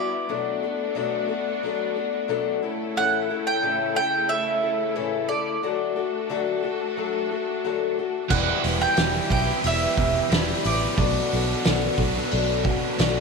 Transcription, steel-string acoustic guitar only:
0.00 0.29 B3 soft
0.00 0.29 E4 medium
0.00 0.29 F#4 medium
0.29 0.62 B2 medium
0.29 0.63 F#3 medium
0.29 0.63 A3 medium
0.29 0.63 D4 medium
0.29 0.61 A4 medium
0.63 0.94 A3 medium
0.63 0.95 D4 medium
0.63 0.96 A4 medium
0.95 1.29 B2 medium
0.95 1.29 F#3 medium
0.95 1.29 A3 medium
0.95 1.28 D4 loud
0.95 1.27 A4 medium
1.28 1.63 A3 medium
1.28 1.63 D4 medium
1.28 1.62 A4 medium
1.63 1.96 F#3 medium
1.63 1.97 A3 medium
1.63 1.96 D4 medium
1.63 1.94 A4 medium
1.96 2.28 A3 soft
1.96 2.29 D4 medium
1.96 2.29 A4 medium
2.28 2.62 B2 medium
2.28 2.63 F#3 loud
2.28 2.63 A3 loud
2.28 2.63 D4 loud
2.28 2.61 A4 loud
2.63 2.96 A3 soft
2.63 2.97 C#4 medium
2.63 2.97 E4 medium
2.63 2.96 A4 medium
2.96 3.30 A2 medium
2.96 3.30 E3 medium
2.96 3.30 A3 medium
2.96 3.29 C#4 medium
2.96 3.29 E4 medium
2.96 3.28 A4 loud
3.29 3.62 A3 medium
3.29 3.62 C#4 medium
3.29 3.63 E4 medium
3.29 3.63 A4 medium
3.63 3.96 A2 medium
3.63 3.96 E3 medium
3.63 3.96 A3 medium
3.63 3.95 C#4 loud
3.63 3.95 E4 loud
3.63 3.94 A4 medium
3.95 4.27 A3 medium
3.95 4.28 C#4 medium
3.95 4.30 E4 medium
3.95 4.29 A4 medium
4.28 4.62 A3 medium
4.28 4.63 C#4 medium
4.28 4.62 E4 medium
4.28 4.61 A4 medium
4.62 4.95 A3 soft
4.62 4.95 C#4 soft
4.62 4.95 E4 medium
4.62 4.95 A4 medium
4.96 5.29 A2 medium
4.96 5.29 E3 medium
4.96 5.29 A3 medium
4.96 5.30 C#4 medium
4.96 5.29 E4 medium
4.96 5.28 A4 loud
5.29 5.63 A3 soft
5.29 5.63 E4 medium
5.29 5.63 A4 medium
5.63 5.96 D3 medium
5.63 5.97 F#3 medium
5.63 5.97 A3 medium
5.63 5.96 F#4 medium
5.63 5.95 A4 medium
5.96 6.29 A3 medium
5.96 6.30 F#4 medium
5.96 6.30 A4 medium
6.29 6.63 D3 medium
6.29 6.63 F#3 medium
6.29 6.63 A3 medium
6.29 6.63 F#4 loud
6.29 6.61 A4 loud
6.63 6.97 A3 medium
6.63 6.97 F#4 medium
6.63 6.96 A4 medium
6.97 7.30 F#3 medium
6.97 7.31 A3 medium
6.97 7.30 F#4 medium
6.97 7.30 A4 medium
7.31 7.64 A3 medium
7.31 7.64 F#4 medium
7.31 7.64 A4 medium
7.64 7.97 D3 medium
7.64 7.98 F#3 medium
7.64 7.98 A3 medium
7.64 7.98 F#4 medium
7.64 7.97 A4 loud
7.99 8.31 A3 medium
7.99 8.31 F#4 medium
7.99 8.31 A4 medium
8.30 8.64 E3 medium
8.30 8.64 G3 medium
8.30 8.64 B3 medium
8.30 8.64 E4 medium
8.66 8.97 B3 soft
8.66 8.98 E4 medium
8.98 9.31 E3 medium
8.98 9.31 G3 medium
8.98 9.31 B3 medium
8.98 9.30 E4 medium
9.31 9.64 B3 medium
9.31 9.64 E4 medium
9.64 9.98 G3 medium
9.64 9.98 B3 medium
9.64 9.98 E4 medium
9.99 10.30 B3 soft
9.99 10.31 E4 medium
10.31 10.65 E3 medium
10.31 10.65 G3 medium
10.31 10.65 B3 medium
10.31 10.65 E4 medium
10.66 10.99 B3 soft
10.66 10.99 E4 medium
10.98 11.31 B2 medium
10.98 11.31 A3 medium
10.98 11.32 D4 medium
10.98 11.32 F#4 medium
10.98 11.31 A4 medium
11.32 11.64 D4 soft
11.32 11.64 F#4 medium
11.32 11.65 A4 medium
11.64 11.98 B2 loud
11.64 11.99 A3 loud
11.64 11.99 D4 medium
11.64 11.99 F#4 loud
11.64 11.97 A4 loud
11.98 12.31 D4 medium
11.98 12.31 F#4 medium
11.98 12.32 A4 medium
12.31 12.65 A3 medium
12.31 12.65 D4 medium
12.31 12.64 F#4 medium
12.31 12.63 A4 medium
12.64 12.98 D4 soft
12.64 12.98 F#4 medium
12.64 12.98 A4 medium
12.98 13.20 B2 medium
12.98 13.20 A3 loud
12.98 13.20 D4 loud
12.98 13.20 F#4 loud
12.98 13.20 A4 loud

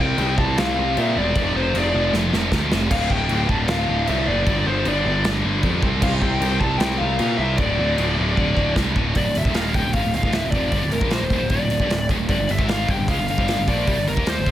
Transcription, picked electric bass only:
0.00 0.17 C2 medium
0.18 0.36 C2 loud
0.38 0.55 C2 medium
0.59 0.76 C2 loud
0.78 0.95 C2 loud
0.97 1.15 A#2 loud
1.16 1.34 E1 medium
1.36 1.53 F1 loud
1.54 1.72 F1 loud
1.74 1.92 F1 loud
1.94 2.12 F1 medium
2.13 2.31 F1 medium
2.33 2.51 F1 medium
2.52 2.70 D2 loud
2.72 2.90 F1 loud
2.91 3.09 D1 medium
3.10 3.28 D1 medium
3.30 3.48 D1 medium
3.49 3.67 D1 medium
3.69 3.87 D1 medium
3.89 4.06 D1 medium
4.09 4.26 C2 loud
4.28 4.45 F#1 loud
4.46 4.64 G1 loud
4.66 4.84 G1 loud
4.86 5.03 G1 loud
5.05 5.23 G1 medium
5.25 5.43 G1 medium
5.45 5.62 G1 loud
5.63 5.81 F2 loud
5.83 6.01 C2 medium
6.02 6.20 C2 medium
6.22 6.40 C2 loud
6.40 6.58 C2 loud
6.61 6.78 C2 medium
6.79 6.97 C2 medium
7.01 7.18 C2 loud
7.20 7.37 A#2 loud
7.38 7.56 C2 loud
7.59 7.76 D1 loud
7.79 7.96 D1 loud
7.98 8.15 D1 medium
8.19 8.36 D1 medium
8.37 8.55 D1 medium
8.57 8.74 D1 medium
8.76 8.94 C2 loud
8.96 9.14 D1 medium
9.15 9.24 D1 medium
9.27 9.35 D1 medium
9.36 9.45 D1 medium
9.45 9.72 D#1 medium
9.75 9.84 D1 medium
9.85 9.93 D1 medium
9.94 10.03 G#1 medium
10.04 10.13 D1 medium
10.14 10.22 D1 medium
10.23 10.41 D1 loud
10.44 10.52 D1 medium
10.52 10.71 F1 loud
10.72 10.81 G1 medium
10.84 10.92 D1 medium
10.93 11.00 D1 medium
11.01 11.20 A#1 medium
11.21 11.29 D1 medium
11.30 11.40 D#1 medium
11.41 11.49 D1 medium
11.50 11.60 D1 medium
11.60 11.69 D1 medium
11.70 11.79 D1 medium
11.79 11.89 G1 medium
11.90 12.08 D1 medium
12.09 12.19 D1 medium
12.20 12.28 D1 medium
12.29 12.38 G1 medium
12.39 12.48 G1 medium
12.49 12.58 G1 medium
12.59 12.87 G#1 medium
12.88 12.98 G1 medium
12.99 13.07 G1 medium
13.08 13.18 C#2 loud
13.19 13.28 G1 medium
13.29 13.38 G1 medium
13.38 13.57 G1 loud
13.59 13.67 G1 medium
13.68 13.86 A#1 loud
13.87 13.97 C2 loud
13.98 14.07 G1 medium
14.08 14.17 G1 medium
14.17 14.36 D#2 medium
14.38 14.46 G1 medium
14.46 14.51 G#1 medium

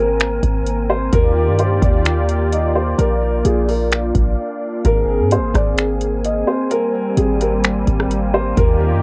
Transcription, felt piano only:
0.00 0.19 A#4 medium
0.90 1.12 C5 medium
1.13 1.57 A#4 loud
1.60 1.82 C5 medium
1.83 2.05 D5 medium
2.52 2.74 D#5 medium
2.75 2.98 C5 medium
2.99 3.42 A#4 loud
3.45 3.67 G#4 medium
3.69 3.91 A#4 medium
4.85 5.29 A#4 loud
5.32 5.54 C5 medium
5.55 5.77 D5 medium
6.25 6.47 D#5 medium
6.47 6.70 C5 medium
6.71 7.15 A#4 loud
7.18 7.40 G#4 medium
7.41 7.63 A#4 medium
8.34 8.56 C5 medium
8.57 9.01 A#4 loud

